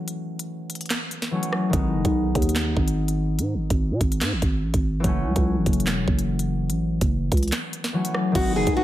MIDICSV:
0, 0, Header, 1, 6, 480
1, 0, Start_track
1, 0, Tempo, 413793
1, 89, Time_signature, 4, 2, 24, 8
1, 10253, End_track
2, 0, Start_track
2, 0, Title_t, "Ambient pad"
2, 0, Program_c, 0, 92
2, 9686, Note_on_c, 0, 63, 82
2, 9686, Note_on_c, 0, 68, 73
2, 9686, Note_on_c, 0, 71, 73
2, 9686, Note_on_c, 0, 80, 89
2, 10253, Note_off_c, 0, 63, 0
2, 10253, Note_off_c, 0, 68, 0
2, 10253, Note_off_c, 0, 71, 0
2, 10253, Note_off_c, 0, 80, 0
2, 10253, End_track
3, 0, Start_track
3, 0, Title_t, "Nylon-string guitar"
3, 0, Program_c, 1, 24
3, 9686, Note_on_c, 1, 66, 106
3, 9878, Note_off_c, 1, 66, 0
3, 9930, Note_on_c, 1, 68, 85
3, 10120, Note_off_c, 1, 68, 0
3, 10168, Note_on_c, 1, 66, 86
3, 10253, Note_off_c, 1, 66, 0
3, 10253, End_track
4, 0, Start_track
4, 0, Title_t, "Harp"
4, 0, Program_c, 2, 46
4, 0, Note_on_c, 2, 52, 63
4, 0, Note_on_c, 2, 54, 57
4, 0, Note_on_c, 2, 57, 61
4, 0, Note_on_c, 2, 61, 78
4, 1504, Note_off_c, 2, 52, 0
4, 1518, Note_on_c, 2, 52, 49
4, 1519, Note_off_c, 2, 54, 0
4, 1533, Note_on_c, 2, 54, 50
4, 1543, Note_off_c, 2, 57, 0
4, 1547, Note_on_c, 2, 57, 45
4, 1558, Note_off_c, 2, 61, 0
4, 1563, Note_on_c, 2, 61, 58
4, 1967, Note_on_c, 2, 51, 66
4, 1996, Note_on_c, 2, 56, 65
4, 2018, Note_off_c, 2, 57, 0
4, 2026, Note_off_c, 2, 61, 0
4, 2026, Note_on_c, 2, 59, 56
4, 2056, Note_on_c, 2, 63, 66
4, 2067, Note_off_c, 2, 52, 0
4, 2067, Note_off_c, 2, 54, 0
4, 5799, Note_on_c, 2, 52, 63
4, 5811, Note_off_c, 2, 59, 0
4, 5830, Note_on_c, 2, 54, 59
4, 5859, Note_on_c, 2, 57, 60
4, 5869, Note_off_c, 2, 63, 0
4, 5889, Note_on_c, 2, 61, 80
4, 5907, Note_off_c, 2, 51, 0
4, 5907, Note_off_c, 2, 56, 0
4, 9183, Note_off_c, 2, 52, 0
4, 9197, Note_on_c, 2, 52, 50
4, 9199, Note_off_c, 2, 54, 0
4, 9212, Note_on_c, 2, 54, 49
4, 9223, Note_off_c, 2, 57, 0
4, 9227, Note_on_c, 2, 57, 45
4, 9237, Note_off_c, 2, 61, 0
4, 9242, Note_on_c, 2, 61, 59
4, 9646, Note_on_c, 2, 51, 67
4, 9677, Note_on_c, 2, 56, 67
4, 9698, Note_off_c, 2, 57, 0
4, 9705, Note_off_c, 2, 61, 0
4, 9706, Note_on_c, 2, 59, 59
4, 9736, Note_on_c, 2, 63, 69
4, 9747, Note_off_c, 2, 52, 0
4, 9747, Note_off_c, 2, 54, 0
4, 10253, Note_off_c, 2, 51, 0
4, 10253, Note_off_c, 2, 56, 0
4, 10253, Note_off_c, 2, 59, 0
4, 10253, Note_off_c, 2, 63, 0
4, 10253, End_track
5, 0, Start_track
5, 0, Title_t, "808-style bass"
5, 0, Program_c, 3, 38
5, 2010, Note_on_c, 3, 32, 109
5, 2250, Note_on_c, 3, 30, 99
5, 2267, Note_off_c, 3, 32, 0
5, 2370, Note_off_c, 3, 30, 0
5, 2378, Note_on_c, 3, 35, 103
5, 2716, Note_off_c, 3, 35, 0
5, 2728, Note_on_c, 3, 39, 104
5, 3189, Note_off_c, 3, 39, 0
5, 3209, Note_on_c, 3, 32, 109
5, 3929, Note_on_c, 3, 44, 104
5, 3946, Note_off_c, 3, 32, 0
5, 4113, Note_on_c, 3, 32, 100
5, 4130, Note_off_c, 3, 44, 0
5, 4287, Note_off_c, 3, 32, 0
5, 4297, Note_on_c, 3, 32, 107
5, 4537, Note_on_c, 3, 47, 98
5, 4554, Note_off_c, 3, 32, 0
5, 4644, Note_off_c, 3, 47, 0
5, 4648, Note_on_c, 3, 32, 102
5, 4890, Note_on_c, 3, 44, 99
5, 4907, Note_off_c, 3, 32, 0
5, 5017, Note_on_c, 3, 32, 97
5, 5035, Note_off_c, 3, 44, 0
5, 5124, Note_off_c, 3, 32, 0
5, 5129, Note_on_c, 3, 32, 106
5, 5370, Note_on_c, 3, 33, 97
5, 5387, Note_off_c, 3, 32, 0
5, 5490, Note_off_c, 3, 33, 0
5, 5496, Note_on_c, 3, 32, 100
5, 5835, Note_off_c, 3, 32, 0
5, 5848, Note_on_c, 3, 30, 104
5, 6088, Note_on_c, 3, 37, 98
5, 6105, Note_off_c, 3, 30, 0
5, 6209, Note_off_c, 3, 37, 0
5, 6217, Note_on_c, 3, 37, 108
5, 6456, Note_on_c, 3, 32, 100
5, 6473, Note_off_c, 3, 37, 0
5, 6563, Note_off_c, 3, 32, 0
5, 6569, Note_on_c, 3, 30, 106
5, 6810, Note_on_c, 3, 28, 104
5, 6827, Note_off_c, 3, 30, 0
5, 7037, Note_off_c, 3, 28, 0
5, 7049, Note_on_c, 3, 30, 106
5, 7768, Note_on_c, 3, 33, 103
5, 7785, Note_off_c, 3, 30, 0
5, 8117, Note_off_c, 3, 33, 0
5, 8136, Note_on_c, 3, 30, 102
5, 8475, Note_off_c, 3, 30, 0
5, 8488, Note_on_c, 3, 37, 101
5, 8719, Note_off_c, 3, 37, 0
5, 9688, Note_on_c, 3, 32, 110
5, 9926, Note_on_c, 3, 30, 102
5, 9943, Note_off_c, 3, 32, 0
5, 10048, Note_off_c, 3, 30, 0
5, 10056, Note_on_c, 3, 35, 103
5, 10253, Note_off_c, 3, 35, 0
5, 10253, End_track
6, 0, Start_track
6, 0, Title_t, "Drums"
6, 89, Note_on_c, 9, 42, 83
6, 205, Note_off_c, 9, 42, 0
6, 457, Note_on_c, 9, 42, 72
6, 573, Note_off_c, 9, 42, 0
6, 809, Note_on_c, 9, 42, 77
6, 873, Note_off_c, 9, 42, 0
6, 873, Note_on_c, 9, 42, 69
6, 937, Note_off_c, 9, 42, 0
6, 937, Note_on_c, 9, 42, 60
6, 993, Note_off_c, 9, 42, 0
6, 993, Note_on_c, 9, 42, 47
6, 1046, Note_on_c, 9, 39, 88
6, 1048, Note_on_c, 9, 38, 109
6, 1049, Note_off_c, 9, 42, 0
6, 1049, Note_on_c, 9, 42, 83
6, 1162, Note_off_c, 9, 39, 0
6, 1164, Note_off_c, 9, 38, 0
6, 1165, Note_off_c, 9, 42, 0
6, 1290, Note_on_c, 9, 42, 78
6, 1406, Note_off_c, 9, 42, 0
6, 1417, Note_on_c, 9, 38, 64
6, 1533, Note_off_c, 9, 38, 0
6, 1657, Note_on_c, 9, 42, 81
6, 1770, Note_on_c, 9, 37, 91
6, 1773, Note_off_c, 9, 42, 0
6, 1886, Note_off_c, 9, 37, 0
6, 2009, Note_on_c, 9, 36, 107
6, 2009, Note_on_c, 9, 42, 80
6, 2125, Note_off_c, 9, 36, 0
6, 2125, Note_off_c, 9, 42, 0
6, 2376, Note_on_c, 9, 42, 71
6, 2377, Note_on_c, 9, 36, 95
6, 2492, Note_off_c, 9, 42, 0
6, 2493, Note_off_c, 9, 36, 0
6, 2729, Note_on_c, 9, 36, 100
6, 2729, Note_on_c, 9, 42, 68
6, 2809, Note_off_c, 9, 42, 0
6, 2809, Note_on_c, 9, 42, 66
6, 2845, Note_off_c, 9, 36, 0
6, 2888, Note_off_c, 9, 42, 0
6, 2888, Note_on_c, 9, 42, 66
6, 2964, Note_on_c, 9, 39, 87
6, 2967, Note_on_c, 9, 38, 111
6, 3004, Note_off_c, 9, 42, 0
6, 3080, Note_off_c, 9, 39, 0
6, 3083, Note_off_c, 9, 38, 0
6, 3209, Note_on_c, 9, 36, 96
6, 3325, Note_off_c, 9, 36, 0
6, 3336, Note_on_c, 9, 42, 77
6, 3452, Note_off_c, 9, 42, 0
6, 3576, Note_on_c, 9, 42, 79
6, 3692, Note_off_c, 9, 42, 0
6, 3929, Note_on_c, 9, 42, 83
6, 4045, Note_off_c, 9, 42, 0
6, 4296, Note_on_c, 9, 42, 73
6, 4297, Note_on_c, 9, 36, 97
6, 4412, Note_off_c, 9, 42, 0
6, 4413, Note_off_c, 9, 36, 0
6, 4649, Note_on_c, 9, 36, 97
6, 4649, Note_on_c, 9, 42, 77
6, 4765, Note_off_c, 9, 36, 0
6, 4765, Note_off_c, 9, 42, 0
6, 4777, Note_on_c, 9, 42, 76
6, 4885, Note_on_c, 9, 39, 83
6, 4888, Note_on_c, 9, 38, 107
6, 4889, Note_off_c, 9, 42, 0
6, 4889, Note_on_c, 9, 42, 84
6, 5001, Note_off_c, 9, 39, 0
6, 5004, Note_off_c, 9, 38, 0
6, 5005, Note_off_c, 9, 42, 0
6, 5129, Note_on_c, 9, 36, 99
6, 5129, Note_on_c, 9, 42, 75
6, 5245, Note_off_c, 9, 36, 0
6, 5245, Note_off_c, 9, 42, 0
6, 5496, Note_on_c, 9, 36, 94
6, 5496, Note_on_c, 9, 42, 82
6, 5612, Note_off_c, 9, 36, 0
6, 5612, Note_off_c, 9, 42, 0
6, 5849, Note_on_c, 9, 36, 109
6, 5849, Note_on_c, 9, 42, 84
6, 5965, Note_off_c, 9, 36, 0
6, 5965, Note_off_c, 9, 42, 0
6, 6216, Note_on_c, 9, 42, 72
6, 6217, Note_on_c, 9, 36, 94
6, 6332, Note_off_c, 9, 42, 0
6, 6333, Note_off_c, 9, 36, 0
6, 6569, Note_on_c, 9, 36, 101
6, 6569, Note_on_c, 9, 42, 70
6, 6648, Note_off_c, 9, 42, 0
6, 6648, Note_on_c, 9, 42, 68
6, 6685, Note_off_c, 9, 36, 0
6, 6728, Note_off_c, 9, 42, 0
6, 6728, Note_on_c, 9, 42, 67
6, 6805, Note_on_c, 9, 39, 87
6, 6807, Note_on_c, 9, 38, 106
6, 6844, Note_off_c, 9, 42, 0
6, 6921, Note_off_c, 9, 39, 0
6, 6923, Note_off_c, 9, 38, 0
6, 7048, Note_on_c, 9, 36, 99
6, 7164, Note_off_c, 9, 36, 0
6, 7176, Note_on_c, 9, 42, 76
6, 7292, Note_off_c, 9, 42, 0
6, 7416, Note_on_c, 9, 42, 81
6, 7532, Note_off_c, 9, 42, 0
6, 7768, Note_on_c, 9, 42, 83
6, 7884, Note_off_c, 9, 42, 0
6, 8135, Note_on_c, 9, 42, 76
6, 8136, Note_on_c, 9, 36, 96
6, 8251, Note_off_c, 9, 42, 0
6, 8252, Note_off_c, 9, 36, 0
6, 8488, Note_on_c, 9, 36, 94
6, 8488, Note_on_c, 9, 42, 80
6, 8552, Note_off_c, 9, 42, 0
6, 8552, Note_on_c, 9, 42, 72
6, 8604, Note_off_c, 9, 36, 0
6, 8615, Note_off_c, 9, 42, 0
6, 8615, Note_on_c, 9, 42, 61
6, 8672, Note_off_c, 9, 42, 0
6, 8672, Note_on_c, 9, 42, 48
6, 8724, Note_on_c, 9, 39, 84
6, 8727, Note_on_c, 9, 38, 108
6, 8728, Note_off_c, 9, 42, 0
6, 8728, Note_on_c, 9, 42, 83
6, 8840, Note_off_c, 9, 39, 0
6, 8843, Note_off_c, 9, 38, 0
6, 8844, Note_off_c, 9, 42, 0
6, 8968, Note_on_c, 9, 42, 77
6, 9084, Note_off_c, 9, 42, 0
6, 9096, Note_on_c, 9, 38, 69
6, 9212, Note_off_c, 9, 38, 0
6, 9335, Note_on_c, 9, 42, 81
6, 9448, Note_on_c, 9, 37, 95
6, 9451, Note_off_c, 9, 42, 0
6, 9564, Note_off_c, 9, 37, 0
6, 9688, Note_on_c, 9, 36, 112
6, 9688, Note_on_c, 9, 42, 86
6, 9688, Note_on_c, 9, 49, 109
6, 9804, Note_off_c, 9, 36, 0
6, 9804, Note_off_c, 9, 42, 0
6, 9804, Note_off_c, 9, 49, 0
6, 10055, Note_on_c, 9, 42, 76
6, 10057, Note_on_c, 9, 36, 97
6, 10171, Note_off_c, 9, 42, 0
6, 10173, Note_off_c, 9, 36, 0
6, 10253, End_track
0, 0, End_of_file